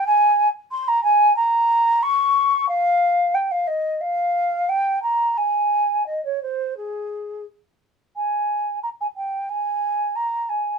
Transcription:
\new Staff \with { instrumentName = "Flute" } { \time 4/4 \key aes \major \tempo 4 = 90 aes''8. r16 c'''16 bes''16 aes''8 bes''4 des'''4 | f''4 g''16 f''16 ees''8 f''4 g''8 bes''8 | aes''4 ees''16 des''16 c''8 aes'4 r4 | aes''4 bes''16 aes''16 g''8 aes''4 bes''8 aes''8 | }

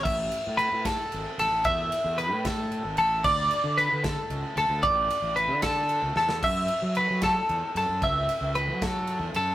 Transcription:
<<
  \new Staff \with { instrumentName = "Clean electric guitar" } { \time 6/8 \key a \major \tempo 4. = 75 e''4 b'8 a'4 a'8 | e''4 b'8 a'4 a'8 | d''4 b'8 a'4 a'8 | d''4 b'8 a'4 a'8 |
e''4 b'8 a'4 a'8 | e''4 b'8 a'4 a'8 | }
  \new Staff \with { instrumentName = "Fingered electric bass" } { \clef bass \time 6/8 \key a \major a,,8 r16 a,8 a,8 r16 gis,,16 r16 a,,16 a,,16 | e,8 r16 e,8 a,4 gis,,16 a,,8 | d,8 r16 d8 d8 r16 cis,16 r16 d,16 d,16 | a,,8 r16 a,,8 d4 cis,16 e,8 |
fis,8 r16 fis8 fis8 r16 e,16 r16 fis,16 fis,16 | cis,8 r16 cis,8 fis4 e,16 fis,8 | }
  \new DrumStaff \with { instrumentName = "Drums" } \drummode { \time 6/8 <cymc bd>8 cymr8 cymr8 <bd cymr sn>8 cymr8 cymr8 | <bd cymr>8 cymr8 cymr8 <bd cymr sn>8 cymr8 cymr8 | <cymc bd>8 cymr8 cymr8 <bd cymr sn>8 cymr8 cymr8 | <bd cymr>8 cymr8 cymr8 <bd cymr sn>8 cymr8 sn16 sn16 |
<cymc bd>8 cymr8 cymr8 <bd cymr sn>8 cymr8 cymr8 | <bd cymr>8 cymr8 cymr8 <bd cymr sn>8 cymr8 cymr8 | }
>>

